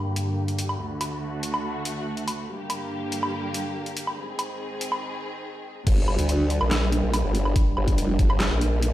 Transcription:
0.00 0.78 G2 medium
0.00 2.45 D3 medium
0.00 0.78 A#3 medium
0.00 0.78 G4 medium
0.16 closed hi-hat medium
0.48 closed hi-hat soft
0.59 closed hi-hat medium
0.69 low woodblock medium
0.80 2.47 D2 medium
0.80 2.47 A3 medium
0.80 2.47 F#4 medium
1.01 closed hi-hat medium
1.01 low woodblock medium
1.43 closed hi-hat medium
1.54 low woodblock medium
1.85 closed hi-hat medium
2.17 closed hi-hat soft
2.28 closed hi-hat medium
2.28 low woodblock soft
2.49 4.16 G2 medium
2.49 4.16 D3 medium
2.49 4.16 A#3 medium
2.49 4.16 G4 medium
2.70 closed hi-hat medium
2.70 low woodblock medium
3.12 closed hi-hat medium
3.23 low woodblock medium
3.54 closed hi-hat medium
3.86 closed hi-hat soft
3.97 closed hi-hat medium
4.07 low woodblock medium
4.18 5.85 G#2 medium
4.18 5.85 D#3 medium
4.18 5.85 C4 medium
4.18 5.85 G#4 medium
4.39 closed hi-hat medium
4.39 low woodblock medium
4.81 closed hi-hat medium
4.92 low woodblock medium
5.87 6.17 G1 medium
5.87 8.93 G3 medium
5.87 8.93 D4 medium
5.87 8.93 A#4 medium
5.87 8.93 G5 medium
5.87 kick loud
5.87 closed hi-hat medium
5.87 crash loud
6.08 low woodblock medium
6.19 6.59 D2 loud
6.19 closed hi-hat medium
6.29 closed hi-hat medium
6.50 closed hi-hat medium
6.61 7.01 A#1 loud
6.61 low woodblock medium
6.71 snare loud
6.71 clap medium
6.71 closed hi-hat medium
6.92 closed hi-hat medium
7.03 7.23 A#1 loud
7.14 closed hi-hat medium
7.14 low woodblock medium
7.24 7.54 G1 loud
7.35 closed hi-hat medium
7.45 low woodblock soft
7.56 kick loud
7.56 closed hi-hat medium
7.77 7.96 G1 loud
7.77 low woodblock soft
7.88 kick medium
7.88 closed hi-hat medium
7.98 8.17 F1 loud
7.98 closed hi-hat medium
8.19 8.49 G1 loud
8.19 kick loud
8.19 closed hi-hat soft
8.30 low woodblock medium
8.40 snare loud
8.40 clap medium
8.40 closed hi-hat medium
8.51 8.93 A#1 loud
8.61 closed hi-hat medium
8.83 closed hi-hat medium

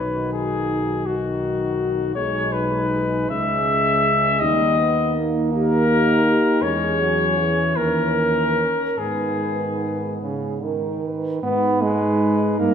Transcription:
0.00 2.11 B1 soft
0.00 1.02 D#3 soft
0.00 0.90 D#4 soft
0.00 1.04 F#4 soft
0.00 0.33 B4 medium
0.33 1.08 G#4 medium
1.06 2.14 D#3 soft
1.06 2.14 D#4 soft
1.06 2.15 F#4 medium
1.06 2.14 F#4 soft
2.15 3.26 B1 soft
2.15 3.26 G#3 soft
2.15 3.26 D#4 soft
2.15 3.26 G#4 soft
2.15 2.54 C#5 medium
2.53 3.31 B4 medium
3.29 4.42 C#2 medium
3.29 4.43 G#3 soft
3.29 4.41 C#4 soft
3.29 4.39 G#4 soft
3.29 4.42 E5 medium
4.40 6.45 D#2 medium
4.40 4.78 G3 medium
4.40 5.49 A#3 soft
4.40 5.51 D#4 medium
4.40 5.23 D#5 medium
4.79 5.17 B3 soft
5.15 6.62 A#3 soft
5.51 6.63 D#4 soft
5.51 5.86 G4 medium
5.51 6.64 A#4 medium
5.88 6.24 G4 medium
6.25 6.62 G4 medium
6.62 7.78 E2 soft
6.62 7.01 G#3 medium
6.62 7.76 C#4 medium
6.62 7.60 G#4 medium
6.62 7.78 C#5 medium
7.00 7.39 F#3 soft
7.38 8.68 E3 soft
7.76 8.68 D#2 soft
7.76 8.97 C#4 soft
7.76 9.00 A#4 medium
7.76 8.97 A#4 soft
8.98 11.06 G#2 soft
8.98 10.19 D#3 soft
8.98 11.10 B3 soft
8.98 10.23 G#4 medium
8.98 10.13 B4 soft
10.22 10.65 C#3 medium
10.22 10.60 G#4 soft
10.63 11.43 D#3 medium
10.63 11.04 A#4 soft
11.05 11.44 B4 soft
11.43 12.61 G#2 medium
11.43 11.83 B3 medium
11.43 12.74 D#4 medium
11.43 12.60 B4 medium
11.82 12.59 G#3 medium
12.59 12.74 G2 medium
12.59 12.74 A#3 medium
12.59 12.74 A#4 medium

